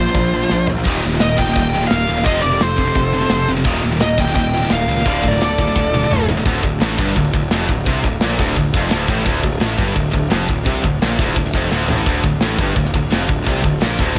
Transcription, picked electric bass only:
0.14 0.43 A#1 loud
0.51 0.65 A#1 loud
0.69 0.83 A#1 loud
0.85 1.00 D#1 loud
1.05 1.18 D#1 loud
1.22 1.36 D#1 loud
1.38 1.52 D#1 medium
1.56 1.84 D#1 loud
1.91 2.05 D#1 loud
2.09 2.23 D#1 medium
2.26 2.40 F1 loud
2.43 2.58 F1 loud
2.60 2.89 F1 medium
2.95 3.24 F1 loud
3.30 3.45 F1 loud
3.48 3.62 F1 loud
3.65 3.79 D#1 loud
3.83 3.98 D#1 loud
4.00 4.15 D#1 loud
4.18 4.33 D#1 medium
4.35 4.64 D#1 loud
4.71 4.85 D#1 loud
4.88 5.02 C#2 loud
5.05 5.20 D1 loud
5.24 5.38 D1 loud
5.41 5.70 D1 medium
5.75 6.04 D1 loud
6.11 6.25 D1 loud
6.28 6.43 D1 loud
6.45 6.62 D1 medium
6.63 6.80 D1 medium
6.81 6.97 A1 loud
6.98 7.15 G1 loud
7.16 7.33 D1 medium
7.33 7.50 D1 medium
7.51 7.68 F1 loud
7.69 7.85 D1 medium
7.86 8.03 C2 medium
8.04 8.20 D1 medium
8.22 8.38 A#1 medium
8.39 8.56 D1 loud
8.56 8.73 D1 medium
8.73 8.90 F1 loud
8.91 9.07 D1 loud
9.08 9.25 A1 loud
9.26 9.42 D1 loud
9.43 9.60 D1 medium
9.61 9.77 A1 loud
9.78 9.95 G1 loud
9.96 10.13 D1 medium
10.13 10.30 D1 medium
10.32 10.48 F1 loud
10.49 10.65 D1 medium
10.65 10.82 C2 loud
10.83 11.00 D1 medium
11.01 11.18 A#1 loud
11.18 11.35 D1 loud
11.36 11.52 D1 medium
11.54 11.70 F1 medium
11.71 11.88 D1 loud
11.89 12.06 A1 loud
12.06 12.23 D1 medium
12.23 12.40 D1 medium
12.41 12.58 A1 loud
12.58 12.75 G1 loud
12.76 12.93 D1 medium
12.93 13.10 D1 medium
13.11 13.28 F1 loud
13.29 13.45 D1 medium
13.47 13.63 C2 loud
13.64 13.80 D1 medium
13.81 13.98 A#1 medium
13.99 14.15 D1 loud

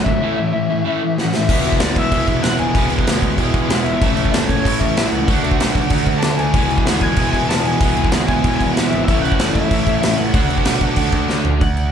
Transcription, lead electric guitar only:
0.04 1.12 E5 medium
1.21 1.36 F#5 medium
1.36 1.80 E5 medium
1.80 1.98 D5 medium
1.98 2.25 E5 loud
2.27 2.42 E5 medium
2.42 2.59 F#5 loud
2.59 2.89 G#5 loud
3.70 3.84 F#5 medium
3.84 4.34 E5 loud
4.32 4.37 D5 loud
4.49 4.82 C#5 medium
4.80 5.09 E5 loud
5.09 6.19 F#5 loud
6.19 6.37 A5 medium
6.37 6.86 G#5 loud
6.86 7.01 F#5 loud
7.01 7.30 G#5 loud
7.31 7.48 G#5 loud
7.49 7.65 A5 loud
7.65 8.11 G#5 loud
8.12 8.27 F#5 loud
8.28 8.55 G#5 loud
8.56 8.72 G#5 loud
8.73 8.78 F#5 medium
8.87 9.03 E5 loud
9.04 9.21 E5 loud
9.21 9.53 F#5 loud
9.53 10.00 E5 loud
10.02 10.19 E5 medium
10.16 11.24 F#5 medium
11.62 11.92 F#5 medium

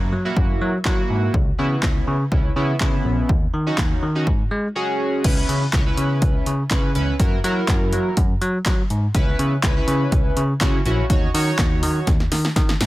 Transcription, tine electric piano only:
0.00 0.12 F#2 loud
0.12 0.28 F#3 medium
0.37 0.52 F#2 medium
0.61 0.77 F#3 loud
0.85 1.01 F#3 loud
1.10 1.26 G#2 medium
1.34 1.50 C#2 loud
1.59 1.75 C#3 loud
1.83 1.99 C#2 medium
2.08 2.23 C#3 loud
2.32 2.48 C#2 medium
2.56 2.72 C#3 loud
2.81 2.96 C#3 medium
3.05 3.21 A#1 medium
3.29 3.45 D#2 loud
3.54 3.70 D#3 medium
3.78 3.94 D#2 loud
4.03 4.27 D#3 medium
4.27 4.43 G#2 medium
4.51 4.67 G#3 loud
5.24 5.40 C#2 loud
5.49 5.65 C#3 medium
5.73 5.89 C#2 loud
5.98 6.22 C#3 medium
6.22 6.38 C#2 loud
6.47 6.62 C#3 medium
6.71 6.95 C#3 loud
6.95 7.11 C#2 medium
7.20 7.35 F#2 loud
7.44 7.60 F#3 loud
7.68 7.93 F#2 loud
7.93 8.09 F#3 medium
8.17 8.33 F#2 loud
8.42 8.57 F#3 loud
8.66 8.82 F#3 loud
8.90 9.06 G#2 medium
9.15 9.30 C#2 loud
9.39 9.55 C#3 loud
9.63 9.79 C#2 medium
9.88 10.04 C#3 loud
10.12 10.28 C#2 loud
10.37 10.53 C#3 loud
10.61 10.77 C#3 loud
10.85 11.01 A#1 medium
11.10 11.26 D#2 loud
11.34 11.50 D#3 loud
11.59 11.83 D#2 loud
11.83 11.99 D#3 loud
12.07 12.23 D#2 loud
12.32 12.48 D#3 loud
12.56 12.72 D#3 loud
12.81 12.86 G#2 medium

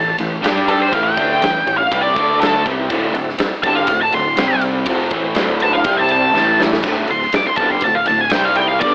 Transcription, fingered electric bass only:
0.00 0.17 A1 medium
0.18 0.41 A1 medium
0.42 0.89 G2 loud
0.92 1.16 A1 medium
1.17 1.40 D2 medium
1.42 1.65 A1 medium
1.66 1.90 A1 medium
1.91 2.14 C2 medium
2.16 2.62 D2 loud
2.66 2.89 C2 loud
2.90 3.12 D1 medium
3.12 3.37 D1 medium
3.39 muted fingered electric bass stroke soft
3.63 3.87 G1 loud
3.88 4.11 D1 medium
4.12 4.36 D1 medium
4.36 4.83 C2 loud
4.86 5.10 F1 medium
5.11 5.35 A1 loud
5.35 5.82 D1 loud
5.84 6.31 C2 medium
6.34 6.81 A1 loud
6.83 7.07 D1 medium
7.08 7.32 D1 medium
7.32 muted fingered electric bass stroke soft
7.57 7.81 G1 medium
7.82 8.06 D1 medium
8.08 8.32 D1 medium
8.33 8.79 C2 medium
8.81 8.95 G1 medium

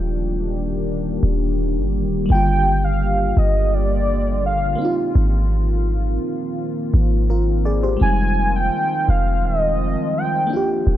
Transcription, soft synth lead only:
2.31 2.86 G5 loud
2.84 3.40 F5 loud
3.38 3.76 D#5 medium
3.74 4.45 D5 medium
4.46 4.95 F5 medium
8.02 8.57 G#5 loud
8.56 9.11 G5 loud
9.09 9.47 F5 medium
9.45 10.19 D#5 loud
10.17 10.70 G5 medium

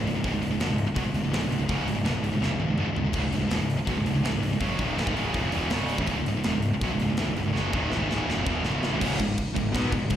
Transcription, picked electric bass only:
0.04 0.13 C#1 medium
0.13 0.22 C#1 medium
0.24 0.31 C#1 loud
0.31 0.40 C#1 medium
0.41 0.49 C#1 medium
0.50 0.59 C#1 medium
0.59 0.68 E1 medium
0.69 0.86 C#1 medium
0.87 muted picked electric bass stroke soft
0.96 1.04 B1 medium
1.05 1.13 C#1 medium
1.13 1.22 C#1 medium
1.22 1.31 C#1 medium
1.32 1.40 A1 medium
1.41 1.50 C#1 medium
1.51 1.59 C#1 medium
1.60 1.68 C#1 medium
1.69 1.85 C#1 medium
1.85 1.93 C#1 medium
1.94 2.02 C#1 medium
2.03 2.12 E1 medium
2.13 2.21 C#1 medium
2.22 2.30 C#1 medium
2.31 2.40 C#1 medium
2.41 2.49 F#1 medium
2.50 2.59 C#1 medium
2.60 2.68 C#1 medium
2.69 2.77 C#1 medium
2.78 2.86 C#1 medium
2.87 2.96 C#1 medium
2.97 3.05 C#1 medium
3.05 3.13 C#1 medium
3.14 3.23 C#1 medium
3.24 3.32 C#1 medium
3.33 3.41 C#1 medium
3.42 3.50 C#1 medium
3.52 3.60 E1 medium
3.61 3.77 C#1 medium
3.79 muted picked electric bass stroke soft
3.87 3.96 B1 medium
3.96 4.05 C#1 medium
4.06 4.14 C#1 medium
4.15 4.23 C#1 medium
4.24 4.32 A1 medium
4.33 4.41 C#1 medium
4.43 4.51 C#1 medium
4.51 4.60 C#1 medium
4.61 4.77 F#1 medium
4.79 4.96 D#1 medium
4.98 5.06 A1 medium
5.07 5.15 G#1 medium
5.17 5.33 C#1 medium
5.34 5.42 D#1 medium
5.44 5.52 F#1 loud
5.52 5.69 E1 medium
5.71 5.96 C#1 loud
5.98 6.06 A1 medium
6.07 6.15 C#1 medium
6.17 6.25 C#1 medium
6.27 6.34 C#1 medium
6.36 6.44 C#1 medium
6.44 6.52 E1 medium
6.55 6.71 C#1 medium
6.74 muted picked electric bass stroke soft
6.81 6.89 B1 medium
6.93 6.99 C#1 medium
7.01 7.08 C#1 medium
7.11 7.18 C#1 medium
7.20 7.27 A1 medium
7.29 7.36 C#1 medium
7.38 7.45 C#1 medium
7.46 7.54 C#1 medium
7.55 7.71 F#1 medium
7.74 7.90 D#1 medium
7.92 7.99 A1 medium
8.01 8.08 G#1 medium
8.11 8.26 C#1 medium
8.29 8.36 D#1 medium
8.37 8.45 F#1 medium
8.46 8.63 E1 medium
8.65 8.90 C#1 medium
8.92 9.00 A1 medium
9.01 9.18 C#1 loud
9.20 9.36 C#1 medium
9.56 9.73 C#1 medium
9.74 9.91 B1 loud
9.92 10.09 C#1 medium
10.10 10.16 C#1 medium

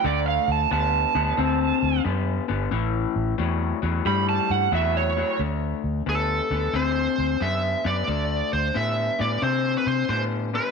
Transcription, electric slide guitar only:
0.06 0.27 D5 loud
0.28 0.49 F5 loud
0.52 0.72 A5 medium
0.73 2.02 A5 loud
4.07 4.28 B5 loud
4.29 4.50 A5 loud
4.51 4.72 F#5 medium
4.75 4.95 E5 loud
4.97 5.39 C#5 loud

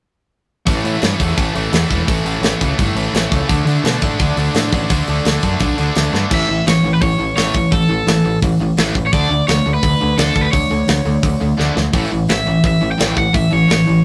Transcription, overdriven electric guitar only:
6.35 6.67 E5 loud
6.68 6.93 C#5 medium
6.94 7.02 B4 medium
7.03 7.35 C#5 medium
7.36 7.73 C#5 medium
7.73 8.38 A4 medium
9.07 9.13 C#5 medium
9.13 9.45 D5 loud
9.47 9.74 C#5 loud
9.74 10.19 B4 loud
10.18 10.45 A4 medium
10.41 10.51 B4 medium
10.52 11.54 C#5 loud
12.31 12.66 E5 loud
12.67 12.91 E5 loud
12.92 13.18 G5 loud
13.18 13.35 F#5 medium
13.35 13.53 E5 loud
13.53 14.04 C#5 medium

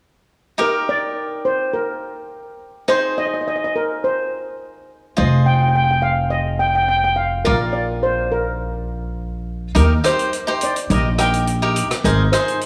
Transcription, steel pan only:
0.61 0.89 A#4 medium
0.89 1.47 D5 medium
1.45 1.58 C5 medium
1.73 2.27 A#4 medium
2.89 3.01 C5 medium
3.18 3.24 D#5 medium
3.26 3.33 D#5 medium
3.34 3.40 D#5 medium
3.41 3.46 D#5 medium
3.48 3.55 D#5 medium
3.56 3.63 D#5 medium
3.64 3.71 D#5 medium
3.76 3.88 A#4 medium
4.04 4.57 C5 medium
5.18 5.31 D#5 medium
5.46 5.53 G5 medium
5.54 5.60 G5 medium
5.61 5.67 G5 medium
5.68 5.74 G5 medium
5.75 5.83 G5 medium
5.84 5.90 G5 medium
5.91 5.99 G5 medium
6.02 6.32 F5 medium
6.30 6.58 D#5 medium
6.59 6.66 G5 medium
6.67 6.74 G5 medium
6.75 6.81 G5 medium
6.82 6.87 G5 medium
6.88 6.95 G5 medium
6.97 7.03 G5 medium
7.04 7.12 G5 medium
7.16 7.46 F5 medium
7.45 7.75 A#4 medium
7.73 8.04 D5 medium
8.03 8.16 C5 medium
8.32 9.14 A#4 medium
9.77 9.89 A#4 medium
10.06 10.58 C5 medium
10.64 10.92 D5 medium
10.92 11.18 D#5 medium
11.20 11.72 G5 medium
12.05 12.34 A#4 medium
12.32 12.66 C5 medium

